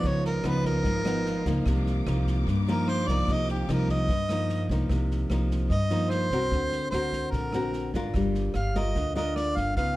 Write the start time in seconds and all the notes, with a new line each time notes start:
Already playing: F3 B3 D#4 F4
0.03 C#2 C#3 B3 C#5 D#5, kick, snare
0.25 A#4, snare
0.43 C#2 F3 B3 D#4, cross-stick, snare
0.48 B4
0.64 A#4, kick, snare
0.84 G#1 G#2, kick, snare
1.05 F3 B3 D#4, cross-stick, snare
1.25 snare
1.45 C#2 F3 A#3 D#4, kick, snare
1.65 C2 C3 A#3 D#4 D6, kick, cross-stick, snare
1.86 snare
2.06 C2 F3 A#3 D#4, cross-stick, snare
2.27 kick, snare
2.47 G2, kick, snare
2.68 F3 A#3 D#4 A#4, snare
2.88 C5, cross-stick, snare
3.08 C2 F3 A#3 D#4 D5, kick, snare
3.28 C2 C3, kick, snare
3.33 D#5
3.48 G4, snare
3.69 C2 F3 A#3 D#4 A#4, cross-stick, snare
3.89 D#5, kick, snare
4.08 G2, kick, snare
4.29 F3 A#3 D#4, cross-stick, snare
4.49 snare
4.69 C2 F3 A#3 D#4, kick, snare
4.89 C2 C3, kick, cross-stick, snare
5.11 snare
5.30 C2 F3 A#3 D#4, cross-stick, snare
5.50 kick, snare
5.70 G2 D#5, kick, snare
5.90 F3 A#3 D#4, snare
6.10 C5, cross-stick, snare
6.31 C2 C4 F#4 A#4, kick, snare
6.51 D2 D3, kick, snare
6.72 snare
6.91 D2 C4 F#4 A#4 C5, cross-stick, snare
7.12 kick, snare
7.31 A#1 D3 A#4, kick, snare
7.53 C4 F#4 A#4, cross-stick, snare
7.73 snare
7.94 G#1 D4 F4 A#4, kick, snare
8.14 G1 G3, kick, cross-stick, snare
8.34 snare
8.54 G1 F5, cross-stick, snare
8.75 F4 A#4 D#5, kick, snare
8.95 D2 D3, kick, snare
9.15 D4 F4 A#4 D#5, snare
9.36 D5, cross-stick, snare
9.56 G1 F5, kick, snare
9.77 C#2 C#3 B3 D#4 F4 F5, kick, snare